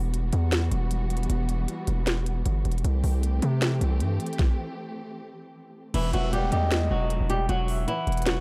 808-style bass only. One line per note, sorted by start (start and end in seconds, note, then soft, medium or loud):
0.00 0.31 E1 loud
0.33 0.70 E2 loud
0.72 1.27 E1 loud
1.30 1.67 E1 loud
1.88 2.43 E1 loud
2.46 2.64 G1 loud
2.65 2.84 E1 loud
2.84 3.03 C2 loud
3.04 3.41 C2 loud
3.42 3.80 C3 loud
3.81 4.02 C2 loud
4.01 4.19 G2 medium
5.94 6.13 E1 loud
6.14 6.51 E1 loud
6.52 6.89 E2 loud
6.91 7.19 E1 loud
7.21 7.48 E1 loud
7.49 7.86 E1 loud
8.07 8.40 E1 loud